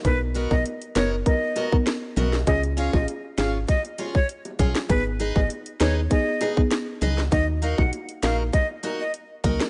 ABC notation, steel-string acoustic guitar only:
X:1
M:4/4
L:1/8
Q:1/4=99
K:G#dor
V:1 name="Steel-string acoustic guitar"
z [B,FAd] z [B,FAd] z [B,FAd] z [B,FAd] | z [CEGc] z [CEGc] z [CEGc] z [CEGc] | z [DGBd] z [DGBd] z [DGBd] z [DGBd] | z [DFAd] z [DFAd] z [DFAd] z [DFAd] |]